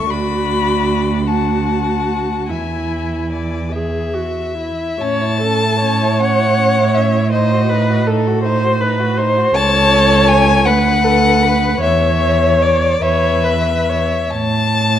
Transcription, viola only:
Already playing: A4
0.11 F#4
1.27 F#4
2.49 E4
3.72 G#4
4.14 F#4
4.57 E4
5.00 C#5
5.41 A4
5.81 C#5
7.33 C5
7.69 B4
8.07 A4
8.43 C5
8.80 B4
9.17 C5
9.54 C#5
10.67 B4
11.04 A4
11.43 B4
11.81 C#5
13.03 C#5
13.44 B4
13.89 C#5

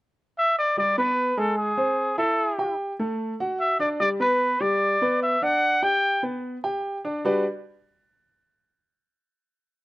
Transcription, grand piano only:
0.77 G3 G4
0.98 B3 B4
1.37 G#3 G#4
1.77 C4 C5
2.18 E4 E5
2.58 G4 G5
2.99 A3 A4
3.40 F#4 F#5
3.79 D4 D5
4.00 G3 G4
4.20 B3 B4
4.60 G3 G4
5.02 B3 B4
5.42 D4 D5
5.82 G4 G5
6.23 B3 B4
6.64 G4 G5
7.05 D4 D5
7.25 G3 D4 F#4 G4 B4 D5

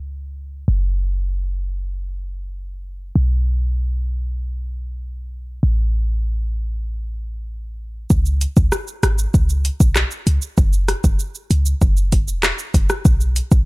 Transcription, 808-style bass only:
Already playing: C#2
0.68 F#1
3.16 B1
5.63 A1
8.10 C#2
8.57 C#2
9.03 G#1
9.34 C#2
9.80 B1
10.27 C#2
10.58 F#1
11.04 F#1
11.51 C#2
11.82 F#1
12.28 E1
12.74 F#1
13.05 B1
13.52 B1

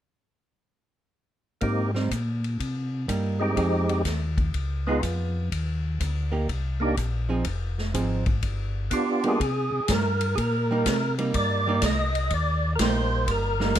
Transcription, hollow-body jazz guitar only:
1.94 G3 C4 D#4
3.08 G3 A#3 D#4
3.56 F3 C4 D#4 G#4
4.87 B3 F4 G#4
6.32 A#3 D#4 G4
7.29 F3 C4 D#4 G#4
7.94 F3 C4 D#4 G#4
9.24 G3 A#3 D#4
10.71 G3 A#3 D#4
11.18 G3 A#3 D#4
11.67 G3 A#3 D#4
12.80 G3 A#3 D#4
13.60 G3 A#3 D#4

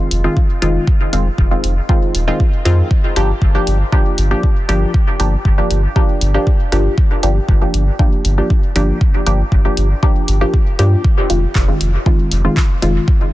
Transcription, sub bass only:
0.11 F1
0.62 F1
1.13 F1
1.38 F1
1.64 F1
2.15 D#1
2.65 F2
3.16 G1
3.42 G1
3.67 G1
4.18 G1
4.69 G1
5.20 G1
5.45 G1
5.71 G1
6.21 G1
6.72 G1
7.23 G1
7.49 G1
7.74 G1
8.25 G1
8.76 G1
9.27 G1
9.52 G1
9.77 G1
10.28 G1
10.79 G2
11.30 F1
11.55 F1
11.81 F1
12.32 F1
12.82 F1

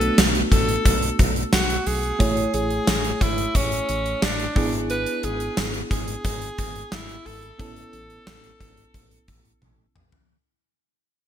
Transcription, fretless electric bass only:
0.18 B1
0.52 A1
0.85 B1
1.19 B1
1.53 B1
1.87 B1
2.20 A1
2.54 A1
2.88 A1
3.21 G#1
3.55 A1
3.89 A1
4.23 A1
4.56 G#1
5.24 G#1
5.58 G#1
5.91 G#1
6.25 G#1
6.59 G#1
6.92 G#1
7.26 G#1
7.59 A1
7.93 A1
8.27 A1
8.61 G#1
8.94 A1
9.28 A1
9.62 A1
9.95 A1

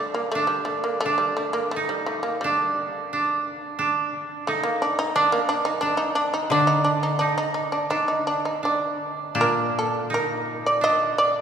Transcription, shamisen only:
Already playing: A3
0.14 A#3
0.32 A3
0.47 G3
0.65 A3
0.84 A#3
1.00 A3
1.18 G3
1.37 A3
1.53 A#3
1.71 A3
1.89 G3
2.06 A3
2.23 A#3
2.41 G3
4.47 A3
4.63 A#3
4.82 D4
4.99 D#4
5.16 D4
5.32 A#3
5.49 D4
5.65 D#4
5.81 D4
5.97 D#4
6.15 D4
6.34 D#4
6.51 D4
6.67 D#4
6.84 D4
7.03 D#4
7.19 D4
7.38 D#4
7.54 D#4
7.72 D4
7.91 D#4
8.08 D#4
8.27 D4
8.45 D#4
8.65 D4
9.41 A#4
9.79 A4
10.14 A#4
10.66 D5
10.84 D#5
11.18 D5

